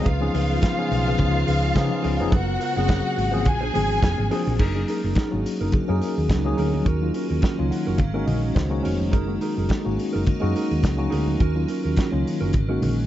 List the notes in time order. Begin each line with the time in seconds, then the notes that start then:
Already playing: G#3
0.05 C#2 C#3 B3 F4 G#4 B4 F5, kick, closed hi-hat, muted conga
0.20 F3 B3 C#4 D#4 G#4
0.33 C#2 G#4 B4 F5, open hi-hat
0.50 G#4 B4 F5
0.61 G#4 B4 F5, kick, snare, closed hi-hat, high conga
0.77 F3 B3 C#4 D#4 G#4, muted clean electric guitar stroke
0.90 B1, muted clean electric guitar stroke, open hi-hat
1.07 G#4 B4 F5
1.18 C#2 F3 B3 C#4 D#4 G#4, muted clean electric guitar stroke, kick, closed hi-hat, muted conga, low conga
1.34 G#4 B4 F5
1.47 C#2 G#4 B4 F5, open hi-hat, muted conga
1.63 muted clean electric guitar stroke
1.75 C#3 F3 B3 C#4 D#4 G#4, muted clean electric guitar stroke, kick, snare, closed hi-hat, high conga
1.90 muted clean electric guitar stroke
2.03 C#2 G#4 B4 F5, open hi-hat
2.19 F1 F3 B3 C#4 D#4 G#4, muted clean electric guitar stroke, high conga
2.31 F#1 A#3 F4 F#4 A#4 C5 F#5, kick, closed hi-hat, muted conga
2.59 F4 A#4 C5, open hi-hat
2.74 F#1 F#3 A#3 C4 C#4 F4 G#4 A#4 C5
2.87 F4 A#4 C5, kick, snare, closed hi-hat, high conga
3.03 muted clean electric guitar stroke
3.16 G#1, muted clean electric guitar stroke, open hi-hat
3.32 F3 A#3 C4 C#4 F4 G#4 A#4 C5
3.45 A#1 G#4 G#5, muted clean electric guitar stroke, kick, closed hi-hat, muted conga, low conga
3.61 D4 G#4 C5
3.73 G#1 F3 A#3 C4 D4 G#4 C5, open hi-hat, muted conga, low conga
3.90 muted clean electric guitar stroke
4.03 F1, muted clean electric guitar stroke, kick, snare, closed hi-hat, high conga
4.18 G#1, muted clean electric guitar stroke
4.30 F3 A#3 C4 D4 G#4 C5, open hi-hat
4.47 A#1, muted clean electric guitar stroke, high conga
4.59 F#1 F#3 D#4 G#4 A#4, kick, crash, muted conga
4.74 F#3 A#3 C#4 D#4 G#4
4.88 D#4 G#4 A#4, open hi-hat
5.04 F#1 D#4 G#4
5.15 D#4 G#4 A#4, kick, snare, closed hi-hat, high conga
5.31 G#1 F#3 A#3 C#4 D#4 F#4, muted clean electric guitar stroke
5.45 muted clean electric guitar stroke, open hi-hat
5.61 F#1 D#4 G#4 A#4
5.72 muted fingered electric bass stroke, muted clean electric guitar stroke, kick, closed hi-hat, muted conga, low conga
5.88 F#2 F#3 A#3 C#4 D#4 G#4 A#4
6.01 D#4 G#4 A#4, open hi-hat, muted conga
6.18 D#2
6.29 C#2, muted clean electric guitar stroke, kick, snare, closed hi-hat, high conga
6.45 F#3 A#3 C#4 D#4 G#4, muted clean electric guitar stroke, high conga
6.57 D2 D#4 G#4 A#4, open hi-hat
6.73 muted clean electric guitar stroke, high conga
6.85 D#2 C#4 F#4 A#4, kick, closed hi-hat, muted conga
7.01 F#3 A#3 C#4 D#4 F4
7.14 C#4 F#4 A#4, open hi-hat
7.30 D#2 C#4 F#4 A#4
7.42 C#4 F#4 A#4, kick, snare, closed hi-hat, high conga
7.58 C#2 F#3 A#3 C#4 D#4 F4, muted clean electric guitar stroke
7.70 F#5, muted clean electric guitar stroke, open hi-hat
7.87 F#1 C#4 F#4 A#4
7.98 G#1 F5, muted clean electric guitar stroke, kick, closed hi-hat, muted conga, low conga
8.14 G#3 A#3 C#4 D#4 F#4 A#4
8.26 A#1 C#4 F#4 A#4 D#5, open hi-hat, muted conga, low conga
8.43 muted clean electric guitar stroke
8.55 C#2 C5, muted clean electric guitar stroke, kick, snare, closed hi-hat, high conga
8.70 G#3 A#3 C#4 D#4 F#4, muted clean electric guitar stroke, high conga
8.83 F1 C#4 F#4 A#4 C#5, open hi-hat
8.99 muted clean electric guitar stroke, high conga
9.11 F#1 F#3 D#4 G#4 A#4, kick, closed hi-hat, muted conga
9.27 G#3 A#3 C#4 D#4 F#4
9.41 D#4 G#4 A#4, open hi-hat
9.57 F#1 D#4 G#4 A#4
9.69 D#4 G#4 A#4, kick, snare, closed hi-hat, high conga
9.84 G#1 G#3 A#3 C#4 D#4 F#4, muted clean electric guitar stroke
9.97 muted clean electric guitar stroke, open hi-hat
10.13 F#1 D#4 G#4 A#4
10.26 muted fingered electric bass stroke, kick, closed hi-hat, muted conga, low conga
10.40 F#2 G#3 A#3 C#4 D#4 F#4 G#4 A#4
10.55 D#4 G#4 A#4, open hi-hat, muted conga
10.70 D#2, muted clean electric guitar stroke
10.82 C#2, muted clean electric guitar stroke, kick, snare, closed hi-hat, high conga
10.97 G#3 A#3 C#4 D#4 F#4, muted clean electric guitar stroke, high conga
11.10 D2 D#4 G#4 A#4, open hi-hat
11.27 muted clean electric guitar stroke, high conga
11.40 D#2 F#3 C#4 F#4 A#4, kick, closed hi-hat, muted conga
11.55 F#3 A#3 C#4 D#4 F4
11.68 C#4 F#4 A#4, open hi-hat
11.84 D#2 C#4 F#4 A#4
11.96 C#4 F#4 A#4, kick, snare, closed hi-hat, high conga
12.11 C#2 F#3 A#3 C#4 D#4 F4, muted clean electric guitar stroke
12.25 muted clean electric guitar stroke, open hi-hat
12.41 F#1 C#4 F#4 A#4
12.53 G#1, muted clean electric guitar stroke, kick, closed hi-hat, muted conga, low conga
12.69 G#3 A#3 C#4 D#4 F#4 A#4
12.82 A#1 C#4 F#4 A#4, open hi-hat, low conga
12.98 muted clean electric guitar stroke